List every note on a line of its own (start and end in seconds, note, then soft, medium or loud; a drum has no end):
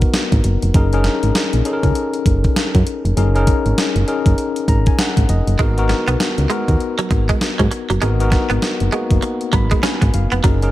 0.00 0.77 B3 medium
0.00 0.75 D#4 medium
0.00 0.76 F#4 medium
0.00 0.76 A#4 medium
0.00 kick medium
0.00 closed hi-hat soft
0.14 snare loud
0.14 closed hi-hat medium
0.32 0.41 G#1 loud
0.32 kick medium
0.32 closed hi-hat medium
0.44 0.57 F#1 medium
0.44 closed hi-hat medium
0.62 0.71 F1 medium
0.62 closed hi-hat medium
0.74 1.09 F#1 loud
0.74 0.91 C#4 medium
0.74 0.91 D#4 medium
0.74 0.91 G#4 medium
0.74 0.92 A#4 medium
0.74 kick loud
0.74 closed hi-hat medium
0.93 1.59 C#4 medium
0.93 1.59 D#4 medium
0.93 1.60 G#4 medium
0.93 1.60 A#4 medium
0.93 closed hi-hat soft
1.04 snare medium
1.04 closed hi-hat medium
1.23 1.32 G#1 medium
1.23 closed hi-hat medium
1.35 snare loud
1.35 closed hi-hat medium
1.53 1.62 A#1 medium
1.53 closed hi-hat soft
1.65 2.76 C#4 medium
1.65 2.77 D#4 medium
1.65 2.77 G#4 medium
1.65 1.74 A4 medium
1.65 closed hi-hat medium
1.73 2.80 A#4 medium
1.83 1.92 C#2 medium
1.83 kick loud
1.83 closed hi-hat soft
1.95 closed hi-hat medium
2.14 closed hi-hat medium
2.26 2.47 F#1 medium
2.26 kick medium
2.26 closed hi-hat medium
2.44 kick medium
2.44 closed hi-hat soft
2.56 snare loud
2.56 closed hi-hat medium
2.75 2.83 F#2 loud
2.75 kick medium
2.75 closed hi-hat medium
2.87 closed hi-hat medium
3.05 3.13 F1 medium
3.05 closed hi-hat medium
3.17 3.52 F#1 loud
3.17 3.33 C#4 medium
3.17 3.33 D#4 medium
3.17 3.33 G#4 medium
3.17 3.34 A#4 medium
3.17 closed hi-hat medium
3.35 4.01 C#4 medium
3.35 4.02 D#4 medium
3.35 4.02 G#4 medium
3.35 4.02 A#4 loud
3.35 closed hi-hat soft
3.47 kick medium
3.47 closed hi-hat medium
3.66 3.74 G#1 medium
3.66 closed hi-hat soft
3.78 snare loud
3.78 closed hi-hat medium
3.96 4.04 F#1 medium
3.96 closed hi-hat soft
4.07 5.19 C#4 medium
4.07 5.19 D#4 medium
4.07 5.19 G#4 medium
4.07 5.19 A#4 medium
4.07 closed hi-hat medium
4.26 4.35 F#1 loud
4.26 kick medium
4.26 closed hi-hat soft
4.38 closed hi-hat medium
4.56 closed hi-hat medium
4.68 4.90 G#1 medium
4.68 4.86 A#5 medium
4.68 kick medium
4.68 closed hi-hat medium
4.86 4.98 G#5 medium
4.86 kick medium
4.86 closed hi-hat soft
4.99 5.27 F#5 medium
4.99 snare loud
4.99 closed hi-hat medium
5.17 5.26 G#1 medium
5.17 kick medium
5.17 closed hi-hat medium
5.29 5.42 F1 loud
5.29 5.57 D#5 medium
5.29 closed hi-hat medium
5.47 5.56 F#1 medium
5.47 closed hi-hat soft
5.59 5.94 G#1 loud
5.59 5.72 G#3 medium
5.59 5.76 B3 medium
5.59 5.76 D#4 medium
5.59 5.76 F#4 medium
5.59 5.76 A#4 medium
5.59 kick loud
5.59 closed hi-hat medium
5.78 6.44 B3 medium
5.78 6.44 D#4 medium
5.78 6.44 F#4 medium
5.78 6.45 A#4 loud
5.78 closed hi-hat medium
5.89 muted clean electric guitar stroke soft
5.89 snare medium
5.89 closed hi-hat medium
6.08 6.17 B1 medium
6.08 6.16 B3 medium
6.08 closed hi-hat medium
6.20 snare loud
6.20 closed hi-hat medium
6.38 6.47 C#2 medium
6.38 closed hi-hat soft
6.50 6.63 G#3 medium
6.50 7.61 B3 medium
6.50 7.61 D#4 medium
6.50 7.62 F#4 medium
6.50 7.62 A#4 medium
6.50 closed hi-hat medium
6.68 6.77 D#2 medium
6.68 kick medium
6.68 closed hi-hat soft
6.80 closed hi-hat medium
6.99 7.07 F#3 medium
6.99 closed hi-hat medium
7.11 7.32 G#1 medium
7.11 muted clean electric guitar stroke soft
7.11 kick medium
7.11 closed hi-hat medium
7.29 7.38 G#3 medium
7.29 kick medium
7.29 closed hi-hat medium
7.41 snare loud
7.41 closed hi-hat medium
7.59 7.68 G#2 loud
7.59 7.68 F#3 medium
7.59 kick medium
7.59 closed hi-hat medium
7.71 muted clean electric guitar stroke soft
7.71 closed hi-hat medium
7.90 7.99 F#1 medium
7.90 7.99 F#3 medium
7.90 closed hi-hat medium
8.02 8.37 G#1 loud
8.02 8.15 G#3 medium
8.02 8.18 B3 medium
8.02 8.18 D#4 medium
8.02 8.18 F#4 medium
8.02 8.19 A#4 medium
8.02 closed hi-hat medium
8.20 8.86 B3 medium
8.20 8.87 D#4 medium
8.20 8.87 F#4 medium
8.20 8.87 A#4 medium
8.20 closed hi-hat medium
8.32 muted clean electric guitar stroke soft
8.32 kick medium
8.32 snare medium
8.32 closed hi-hat medium
8.50 8.59 G#1 medium
8.50 8.59 B3 medium
8.50 closed hi-hat soft
8.62 snare medium
8.62 closed hi-hat medium
8.80 8.90 F#1 medium
8.80 closed hi-hat soft
8.92 9.06 G#3 medium
8.92 10.04 A#3 medium
8.92 10.04 B3 medium
8.92 10.04 D#4 medium
8.92 10.04 F#4 medium
8.92 closed hi-hat medium
9.11 9.19 F#1 medium
9.11 kick medium
9.11 closed hi-hat soft
9.22 muted clean electric guitar stroke soft
9.22 closed hi-hat medium
9.41 closed hi-hat medium
9.53 9.75 G#1 medium
9.53 9.66 F#3 medium
9.53 9.82 B5 medium
9.53 kick medium
9.53 closed hi-hat medium
9.71 9.80 G#3 medium
9.71 kick medium
9.71 closed hi-hat soft
9.83 9.97 C#4 medium
9.83 10.12 G#5 medium
9.83 snare loud
9.83 closed hi-hat medium
10.02 10.10 G#1 loud
10.02 muted clean electric guitar stroke soft
10.02 kick medium
10.02 closed hi-hat medium
10.14 10.27 F#1 medium
10.14 10.42 F5 medium
10.14 closed hi-hat medium
10.32 10.41 F1 medium
10.32 10.41 B3 medium
10.32 closed hi-hat medium
10.44 10.71 F#1 loud
10.44 10.57 F#3 medium
10.44 10.60 C#4 medium
10.44 10.61 D#4 medium
10.44 10.61 G#4 medium
10.44 10.61 A#4 medium
10.44 kick loud
10.44 closed hi-hat medium
10.62 10.71 C#4 medium
10.62 10.71 D#4 medium
10.62 10.71 G#4 medium
10.62 10.71 A#4 medium
10.62 closed hi-hat soft